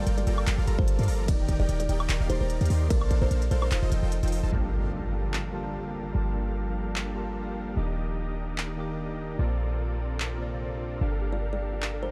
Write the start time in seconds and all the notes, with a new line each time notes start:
Already playing: F3 G3 A#3 F4 G4 A4 A#4
0.07 G1 F4 A4 A#4 D5 G5, closed hi-hat
0.18 D5, closed hi-hat
0.27 G1 F4 A4 A#4 D5 G5, closed hi-hat
0.38 high woodblock
0.47 G1 F4 A4 A#4 D5 G5, clap, closed hi-hat, ride
0.58 G1 F4 A4 A#4 D5 F5
0.65 G1 G3 F4 A4 A#4 D5 A#5, closed hi-hat
0.69 A#4
0.79 G1 F4 A4 A#4 C5 D5 A5, kick
0.88 closed hi-hat
0.99 G2 F4 A4 A#4 D5 F5, closed hi-hat
1.03 closed hi-hat
1.08 G1 F4 A4 A#4 D5 A#5, open hi-hat
1.26 D#1 D#3 D#4 G4 A#4 D5 G5, kick, closed hi-hat, ride
1.30 D5
1.49 kick, closed hi-hat
1.60 D#1 D#4 G4 A#4 D5 G5
1.69 D#1 D#4 G4 A#4 D5 G5, closed hi-hat
1.80 D5, closed hi-hat
1.89 D#1 D#4 G4 A#4 D5 G5, closed hi-hat
2.00 high woodblock
2.09 D#1 D#4 G4 A#4 D5 G5, clap, closed hi-hat, ride
2.20 D#1 D#4 G4 A#4 D5 F5
2.28 D#1 D#3 D#4 G4 A#4 C5 D5 C6, closed hi-hat
2.41 D#1 D#4 G4 A#4 C5 D5 A#5
2.50 closed hi-hat
2.61 D#2 D#4 G4 A#4 D5 F5, closed hi-hat
2.66 closed hi-hat
2.70 D#2 D#4 G4 A#4 D5 C6, open hi-hat
2.88 A#1 A#3 D4 A4 A#4 C5 F5, kick, closed hi-hat, ride
2.92 D5
3.01 high woodblock
3.11 kick, closed hi-hat
3.22 A#1 D4 A4 A#4 C5 F5
3.31 A#1 D4 A4 A#4 C5 F5, closed hi-hat
3.42 closed hi-hat
3.51 A#1 D4 A4 A#4 C5 F5, closed hi-hat
3.62 C5, high woodblock
3.71 F1 D#4 F4 A4 C5 F5, clap, closed hi-hat, ride
3.83 F1 D#4 F4 A4 C5 D#5
3.90 F1 F3 D#4 F4 A4 C5 G5, closed hi-hat
3.94 D#5
4.03 F1 D#4 F4 A4 C5 G5
4.12 closed hi-hat
4.23 F1 D#4 F4 A4 C5 G5, closed hi-hat
4.28 closed hi-hat
4.32 open hi-hat
4.43 F1 D#4 F4 A4 C5 A5
4.51 G1 F3 G3 A#3 D4 F4 G4 A4 A#4 F5 A5, impact
4.55 A#3
5.34 clap
5.52 G3 F4 A5
5.56 A#3
6.13 G1 G3 F4 A5
6.17 A#3
6.96 clap
7.14 G3 F4 A5
7.18 A#3
7.75 D#1 D#3 A#3 D4 D#4 G4 A#4 D#5
7.79 D6
8.58 clap
8.76 D#3 A#3 G4
8.80 D6
9.37 A#1 A#2 C3 C4 D4 F4 A4 A#4 C5 D5
9.41 D5
10.20 clap
10.38 A#2 C5 D5
11.01 G1 F3 D4 G4 A4 A#4 F5
11.12 A4
11.21 G4
11.32 F4 D5
11.42 A#4
11.53 A4 D5
11.62 G4
11.73 F4
11.82 A#4, clap
11.93 A4
12.03 A#4 C5